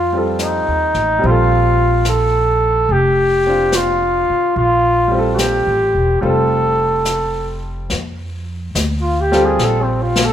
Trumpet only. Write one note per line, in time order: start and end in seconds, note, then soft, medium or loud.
0.00 0.21 F4 medium
0.42 1.28 D#4 medium
1.26 2.07 F4 medium
2.08 2.93 A4 medium
2.92 3.77 G4 medium
3.76 4.57 F4 medium
4.57 5.18 F4 medium
5.34 5.39 F#4 soft
5.38 6.22 G4 medium
6.22 7.60 A4 medium
9.01 9.22 F4 medium
9.21 9.47 G4 medium
9.45 9.65 G#4 medium
9.64 9.84 A4 medium
9.82 10.04 C4 soft
10.02 10.26 F4 medium
10.25 10.33 A4 medium